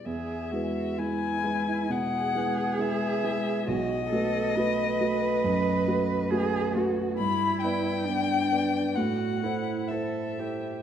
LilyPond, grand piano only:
\new Staff \with { instrumentName = "Grand piano" } { \time 4/4 \key e \major \tempo 4 = 68 e,8 <gis e' b'>8 <gis e' b'>8 <gis e' b'>8 b,8 <gis e' b'>8 <gis e' b'>8 <gis e' b'>8 | b,,8 <a fis' b'>8 <a fis' b'>8 <a fis' b'>8 fis,8 <a fis' b'>8 <a fis' b'>8 <a fis' b'>8 | \key a \dorian g,8 <b b' d''>8 <b b' d''>8 <b b' d''>8 a,8 <e' a' c''>8 <e' a' c''>8 <e' a' c''>8 | }